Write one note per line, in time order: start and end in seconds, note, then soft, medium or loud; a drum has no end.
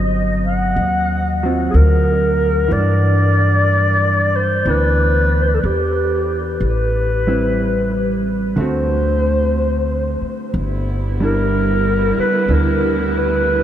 0.00 0.73 G1 medium
0.00 1.42 F#3 soft
0.00 1.44 C4 soft
0.46 1.39 F#5 medium
0.76 1.70 D#2 medium
1.43 2.68 F#3 soft
1.43 2.73 C4 soft
1.43 2.73 F4 soft
1.71 2.67 D2 medium
1.71 1.77 G#4 medium
1.75 2.74 A#4 medium
2.68 4.62 G2 medium
2.68 4.66 E3 soft
2.72 4.37 D5 medium
2.79 4.68 D4 soft
4.36 4.71 C5 medium
4.65 5.59 D2 medium
4.65 6.61 E3 soft
4.65 6.62 B3 soft
4.65 6.62 D4 soft
4.65 5.44 B4 medium
5.42 5.49 C5 medium
5.48 5.56 B4 medium
5.55 5.62 A4 medium
5.60 6.57 E2 medium
5.60 5.67 B4 medium
5.65 6.44 G4 medium
6.60 8.52 A1 medium
6.65 8.22 B4 medium
7.27 8.57 G3 soft
7.27 8.57 C4 soft
7.27 8.57 E4 soft
8.56 10.17 D2 medium
8.56 10.53 D3 soft
8.56 10.54 A3 soft
8.56 10.55 C4 soft
8.56 10.19 C5 medium
8.61 10.56 F#4 soft
10.21 muted upright bass stroke soft
10.53 12.13 G1 medium
10.53 13.63 D3 medium
10.53 13.63 G3 medium
10.53 13.63 B3 medium
10.53 13.63 E4 medium
11.20 13.63 G3 soft
11.20 12.49 D4 soft
11.20 12.50 E4 soft
11.20 12.15 A#4 medium
12.18 12.55 B4 medium
12.18 muted upright bass stroke soft
12.48 13.63 D2 medium
12.48 13.63 D4 soft
12.48 13.63 E4 soft
12.54 13.17 A#4 medium
13.18 13.63 B4 medium